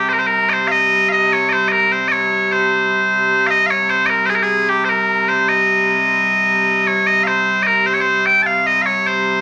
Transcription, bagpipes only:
0.09 0.19 A#4 medium
0.09 0.13 C5 medium
0.19 0.27 C5 medium
0.27 0.49 A#4 medium
0.49 0.67 C5 medium
0.49 0.53 D#5 medium
0.67 0.72 F5 medium
0.71 1.09 D#5 medium
1.09 1.33 D#5 medium
1.09 1.12 F5 medium
1.33 1.49 C#5 medium
1.49 1.68 C5 medium
1.49 1.52 D#5 medium
1.68 1.72 D#5 medium
1.72 1.92 A#4 medium
1.92 2.08 C5 medium
2.08 2.52 C#5 medium
2.08 2.12 D#5 medium
2.52 3.47 C5 medium
3.47 3.66 D#5 loud
3.47 3.50 F5 loud
3.66 3.70 F5 medium
3.70 3.90 C#5 medium
3.90 4.06 C5 medium
4.06 4.26 A#4 medium
4.06 4.10 D#5 medium
4.26 4.35 G#4 medium
4.26 4.30 C5 medium
4.35 4.43 A#4 medium
4.43 4.69 G#4 medium
4.69 4.85 G4 medium
4.85 4.89 C5 medium
4.89 5.29 A#4 medium
5.29 5.48 C5 medium
5.48 6.87 D#5 medium
6.87 7.07 C#5 medium
7.07 7.23 D#5 medium
7.23 7.62 C5 medium
7.23 7.27 F5 medium
7.62 7.67 D#5 medium
7.67 7.86 A#4 medium
7.86 7.93 C5 medium
7.93 8.00 C#5 medium
8.00 8.26 C5 medium
8.26 8.42 G5 medium
8.42 8.67 F5 medium
8.42 8.46 A5 medium
8.66 8.82 D#5 medium
8.82 9.07 C#5 medium
8.82 8.86 F5 medium
9.07 9.41 C5 medium

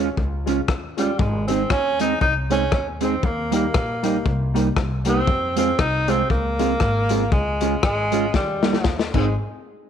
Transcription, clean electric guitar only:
0.17 muted clean electric guitar stroke soft
0.47 0.59 G#3 medium
0.47 0.60 C#4 medium
0.47 0.60 F4 medium
0.98 1.10 G#3 medium
0.98 1.11 C#4 medium
0.98 1.11 F4 medium
1.50 1.61 G#3 medium
1.50 1.62 C4 medium
1.50 1.62 D#4 medium
2.00 2.12 G#3 medium
2.00 2.13 C4 medium
2.00 2.13 D#4 loud
2.22 muted clean electric guitar stroke soft
2.50 2.63 G#3 medium
2.50 2.63 C4 medium
2.50 2.64 D#4 medium
3.01 3.14 G#3 medium
3.01 3.14 C4 medium
3.01 3.15 D#4 medium
3.51 3.64 G3 medium
3.51 3.65 A#3 medium
3.51 3.66 D#4 loud
4.03 4.16 G3 medium
4.03 4.17 A#3 medium
4.03 4.17 D#4 loud
4.25 muted clean electric guitar stroke soft
4.55 4.67 G3 medium
4.55 4.68 A#3 medium
4.55 4.68 D#4 medium
5.06 5.18 G3 medium
5.06 5.19 A#3 medium
5.06 5.20 D#4 medium
5.56 5.69 G#3 medium
5.56 5.70 C4 medium
5.56 5.70 F4 medium
6.08 6.21 G#3 medium
6.08 6.21 C4 medium
6.08 6.21 F4 medium
6.30 muted clean electric guitar stroke soft
6.59 6.72 G#3 medium
6.59 6.72 C4 medium
6.59 6.73 F4 medium
7.10 7.23 G#3 medium
7.10 7.23 C4 medium
7.10 7.24 F4 medium
7.62 7.74 G#3 medium
7.62 7.74 C#4 medium
7.62 7.75 F4 medium
8.12 8.25 G#3 medium
8.12 8.25 C#4 loud
8.12 8.25 F4 loud
8.34 muted clean electric guitar stroke soft
8.63 8.76 G3 medium
8.63 8.76 A#3 medium
8.63 8.77 D#4 medium
9.14 9.27 G#3 medium
9.14 9.28 C4 medium
9.14 9.28 D#4 medium

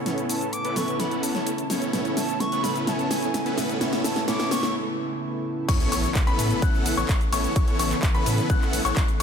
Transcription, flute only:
0.29 0.54 A5 loud
0.53 0.78 D6 loud
0.76 1.01 C#6 loud
1.00 1.25 B5 loud
1.23 1.70 A5 medium
2.17 2.42 A5 loud
2.40 2.65 C#6 loud
2.64 2.87 B5 loud
2.87 2.95 A5 loud
2.93 3.01 G#5 medium
2.99 3.12 A5 loud
3.11 3.58 G#5 medium
4.04 4.26 A5 loud
4.28 4.53 D6 loud
4.51 4.75 C#6 loud

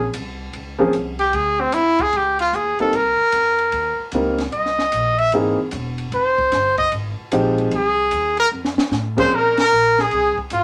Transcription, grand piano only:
0.79 0.92 F3 medium
0.79 0.92 A#3 medium
0.79 0.92 C4 medium
0.79 0.92 C#4 medium
0.79 0.93 G#4 medium
2.80 2.92 G3 medium
2.80 2.92 A#3 medium
2.80 2.92 C4 medium
2.80 2.92 D#4 medium
2.80 2.92 A#4 medium
4.14 4.37 G3 medium
4.14 4.37 A#3 medium
4.14 4.37 C4 medium
4.14 4.37 D#4 medium
4.14 4.38 A#4 medium
5.34 5.57 E3 medium
5.34 5.57 A#3 medium
5.34 5.57 C4 medium
5.34 5.57 D#4 medium
5.34 5.57 G#4 medium
7.32 7.72 F3 medium
7.32 7.72 G#3 medium
7.32 7.72 C4 medium
7.32 7.72 D#4 medium
7.32 7.72 G4 medium
9.17 9.30 F3 medium
9.17 9.30 A#3 medium
9.17 9.30 C4 medium
9.17 9.30 C#4 medium
9.17 9.30 G#4 medium

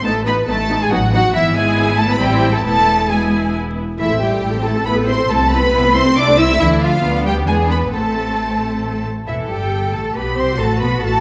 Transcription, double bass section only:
0.04 0.42 A1 medium
0.48 0.86 A1 medium
0.91 1.29 A1 medium
1.33 2.17 G#1 medium
2.21 2.65 A1 medium
2.65 3.77 E1 medium
3.99 4.38 A1 medium
4.43 4.82 A1 medium
4.86 5.25 A1 medium
5.30 5.68 C2 medium
5.74 6.12 C2 medium
6.17 6.55 C2 medium
6.61 7.00 D2 medium
7.03 7.46 D2 medium
7.47 7.92 E2 medium
7.92 9.04 A1 soft
9.27 9.48 E1 soft
9.49 9.93 G1 soft
9.94 10.16 A1 soft
10.16 10.37 B1 medium
10.38 10.59 C2 medium
10.60 10.81 A1 medium
10.81 11.02 B1 medium
11.03 11.20 A1 medium

